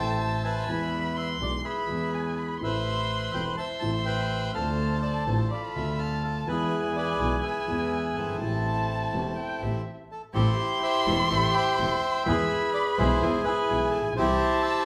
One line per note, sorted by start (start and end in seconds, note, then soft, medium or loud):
0.00 0.64 A1 medium
0.00 0.64 A2 medium
0.00 0.63 E3 medium
0.00 0.64 A3 medium
0.00 0.64 C4 soft
0.00 0.16 A4 medium
0.00 0.65 A4 medium
0.00 0.64 C5 medium
0.00 0.43 E5 medium
0.00 0.18 G5 medium
0.00 0.70 A5 medium
0.20 0.44 A5 medium
0.44 1.37 B4 medium
0.44 1.17 E5 medium
0.44 0.89 G#5 medium
0.67 1.36 E2 medium
0.67 1.37 E2 medium
0.67 0.68 E3 medium
0.67 1.37 E3 medium
0.67 1.36 G#3 medium
0.67 1.37 B3 medium
0.67 1.38 G#4 medium
0.67 1.18 B5 medium
1.16 1.29 E5 medium
1.16 1.67 C6 medium
1.40 1.60 B1 medium
1.40 1.61 B1 medium
1.40 1.61 B2 medium
1.40 1.60 E3 medium
1.40 1.61 G#3 medium
1.40 1.61 B3 medium
1.40 1.61 G#4 medium
1.40 1.52 D5 medium
1.64 2.57 G#4 soft
1.64 2.57 B4 soft
1.64 2.09 E5 medium
1.64 2.15 B5 medium
1.86 2.57 E2 medium
1.86 2.58 E2 medium
1.86 2.58 E3 medium
1.86 2.58 G#3 medium
1.86 2.58 B3 medium
1.91 2.59 G#4 medium
2.14 2.39 G#5 medium
2.38 2.59 B5 medium
2.59 3.30 A1 medium
2.59 3.31 A1 medium
2.59 3.31 A2 medium
2.59 3.29 E3 medium
2.59 3.30 A3 soft
2.59 3.31 C4 medium
2.59 3.54 C6 medium
2.63 3.32 A4 medium
2.63 3.56 B4 medium
2.63 3.56 C5 medium
2.63 3.31 E5 medium
3.33 3.54 E1 medium
3.33 3.55 E1 medium
3.33 3.55 E2 medium
3.33 3.54 E3 medium
3.33 3.54 B3 medium
3.33 3.54 C4 medium
3.33 3.55 A4 medium
3.33 3.45 G5 medium
3.57 4.05 C5 medium
3.57 4.51 E5 medium
3.57 3.68 A5 medium
3.57 4.57 C6 medium
3.80 4.51 A1 medium
3.80 4.51 A2 medium
3.80 4.50 E3 medium
3.80 4.51 A3 medium
3.80 4.52 C4 soft
3.80 3.91 A5 medium
3.84 4.52 A4 medium
4.06 4.51 B4 medium
4.06 4.52 C5 medium
4.06 4.51 G5 medium
4.54 5.23 D2 medium
4.54 5.24 D2 medium
4.54 5.24 D3 medium
4.54 5.23 F3 medium
4.54 5.24 C4 medium
4.54 5.24 D4 medium
4.54 5.47 A4 medium
4.54 5.24 C5 medium
4.54 4.99 F5 medium
4.54 5.51 A5 medium
4.58 5.25 A4 medium
5.02 5.25 D5 medium
5.26 5.47 A1 medium
5.26 5.47 A2 medium
5.26 5.47 F3 medium
5.26 5.47 C4 medium
5.26 5.47 D4 medium
5.26 5.47 A4 medium
5.26 5.51 C5 medium
5.51 6.44 F4 medium
5.51 6.23 A4 medium
5.51 5.62 D5 medium
5.51 6.01 B5 medium
5.74 6.43 D2 medium
5.74 6.43 D3 medium
5.74 6.43 F3 medium
5.74 6.43 C4 medium
5.74 6.44 D4 medium
5.74 6.00 E5 medium
5.78 6.45 A4 medium
5.99 6.23 F5 medium
5.99 6.49 A5 medium
6.24 6.48 A4 medium
6.45 7.15 E2 medium
6.45 7.16 E2 medium
6.45 7.16 E3 medium
6.45 7.15 G#3 medium
6.45 7.16 B3 medium
6.45 7.16 G#4 medium
6.45 6.92 B4 medium
6.45 8.41 G#5 medium
6.50 7.41 E4 medium
6.50 6.96 G#4 medium
6.96 7.45 G#4 medium
6.96 7.44 B4 medium
6.96 7.40 D5 medium
7.18 7.39 B1 medium
7.18 7.40 B1 medium
7.18 7.40 B2 medium
7.18 7.40 E3 medium
7.18 7.40 G#3 medium
7.18 7.40 B3 medium
7.18 7.40 G#4 medium
7.44 8.37 G#4 medium
7.44 8.37 B4 medium
7.44 8.18 E5 medium
7.67 8.14 E2 medium
7.67 8.36 E2 medium
7.67 8.36 E3 medium
7.67 8.36 G#3 medium
7.67 8.36 B3 medium
7.67 8.37 G#4 medium
8.15 8.39 G1 medium
8.15 9.82 C4 soft
8.15 9.82 E4 medium
8.15 9.81 A4 medium
8.23 8.28 F#1 soft
8.28 8.34 G1 medium
8.36 8.41 G#1 medium
8.36 9.36 A5 medium
8.40 9.08 A1 medium
8.40 9.09 A1 medium
8.40 9.09 A2 medium
8.40 9.08 E3 medium
8.40 9.09 A3 medium
8.40 9.10 C4 medium
8.40 9.10 G4 medium
9.12 9.32 E1 medium
9.12 9.33 E1 medium
9.12 9.33 E2 medium
9.12 9.33 E3 medium
9.12 9.33 A3 medium
9.12 9.33 C4 medium
9.12 9.33 G4 medium
9.37 9.63 G5 medium
9.60 9.81 A1 medium
9.60 9.82 A1 medium
9.60 9.82 A2 medium
9.60 9.82 E3 medium
9.60 9.82 A3 soft
9.60 9.82 C4 soft
9.60 9.82 G4 medium
9.60 9.86 E5 medium
10.12 10.22 A4 medium
10.34 10.54 A1 medium
10.34 10.55 A1 medium
10.34 10.55 A2 medium
10.34 10.54 E3 medium
10.34 10.54 A3 medium
10.34 10.54 C4 medium
10.34 10.55 C4 medium
10.34 11.27 E4 medium
10.34 10.54 G4 medium
10.34 10.82 G4 medium
10.34 10.55 G4 medium
10.34 10.54 A4 medium
10.34 10.79 C5 medium
10.34 12.23 C6 loud
10.82 11.75 G4 medium
10.82 11.31 C5 medium
10.82 11.27 E5 medium
11.05 11.26 E1 medium
11.05 11.27 E1 medium
11.05 11.27 E2 medium
11.05 11.26 E3 medium
11.05 11.27 A3 medium
11.05 11.26 C4 medium
11.05 11.27 C4 medium
11.05 11.26 G4 medium
11.05 11.27 G4 medium
11.05 11.26 A4 medium
11.29 11.50 A1 medium
11.29 11.51 A1 medium
11.29 11.51 A2 medium
11.29 11.50 E3 medium
11.29 11.50 A3 medium
11.29 11.50 C4 medium
11.29 11.50 G4 medium
11.29 11.51 G4 medium
11.29 11.50 A4 medium
11.29 11.55 C5 medium
11.29 11.54 E5 medium
11.29 11.41 G5 medium
11.54 12.23 C5 medium
11.54 12.23 E5 medium
11.54 12.28 G5 loud
11.77 11.99 E1 medium
11.77 11.99 E2 medium
11.77 11.99 E3 soft
11.77 11.99 A3 soft
11.77 11.98 C4 soft
11.77 11.99 C4 soft
11.77 11.98 G4 soft
11.77 11.99 G4 medium
11.77 11.98 A4 soft
12.25 12.46 E2 medium
12.25 12.46 E3 medium
12.25 12.46 G#3 medium
12.25 12.46 B3 medium
12.25 12.46 E4 medium
12.25 12.46 G#4 medium
12.25 12.98 G#4 medium
12.25 13.19 B4 medium
12.25 12.70 E5 loud
12.25 13.23 B5 medium
12.74 12.85 D5 medium
12.97 13.18 B1 loud
12.97 13.19 B1 loud
12.97 13.19 B2 medium
12.97 13.18 E3 medium
12.97 13.18 G#3 medium
12.97 13.18 B3 medium
12.97 13.19 B3 medium
12.97 13.18 E4 medium
12.97 13.45 E4 medium
12.97 13.18 G#4 medium
12.97 13.19 G#4 medium
12.97 13.45 G#4 medium
12.97 13.42 C5 loud
13.21 13.41 E2 medium
13.21 13.42 E2 medium
13.21 13.42 E3 medium
13.21 13.42 G#3 medium
13.21 13.42 B3 medium
13.21 13.42 E4 medium
13.21 13.42 G#4 medium
13.21 14.18 G#5 medium
13.44 14.14 E4 medium
13.44 14.13 G#4 medium
13.44 13.89 B4 medium
13.70 13.90 B1 medium
13.70 13.90 B2 medium
13.70 13.90 E3 medium
13.70 13.90 G#3 soft
13.70 13.90 B3 medium
13.70 13.90 B3 soft
13.70 13.90 E4 soft
13.70 13.90 G#4 soft
13.70 13.90 G#4 medium
13.91 14.17 A#1 medium
13.91 14.02 A4 medium
14.01 14.06 A1 medium
14.07 14.12 A#1 medium
14.12 14.18 B1 medium
14.17 14.38 C2 medium
14.17 14.38 C3 medium
14.17 14.38 E3 medium
14.17 14.38 G3 medium
14.17 14.37 C4 medium
14.17 14.38 C4 medium
14.17 14.37 E4 medium
14.17 14.85 E4 medium
14.17 14.37 G4 medium
14.17 14.63 G4 medium
14.17 14.38 G4 medium
14.17 14.64 C5 loud
14.17 14.85 A5 loud
14.63 14.85 G4 medium
14.63 14.85 C5 medium
14.63 14.85 E5 medium